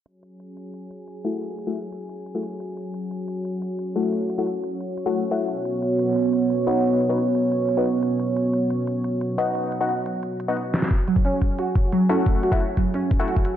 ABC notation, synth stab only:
X:1
M:4/4
L:1/16
Q:1/4=177
K:F#dor
V:1 name="Synth stab"
z12 z2 [A,EF]2- | [A,EF]3 [A,EF] z6 z [A,EF] z4 | z12 z2 [A,EF]2- | [A,EF]3 [A,EF] z6 z [A,EF]2 z [A,EF]2 |
z12 z2 [B,DF]2- | [B,DF]3 [B,DF] z6 z [B,DF] z4 | z12 z2 [B,DF]2- | [B,DF]3 [B,DF] z6 z [B,DF] z4 |
z12 z2 [A,EF]2- | [A,EF]3 [A,EF] z6 z [A,EF] z4 |]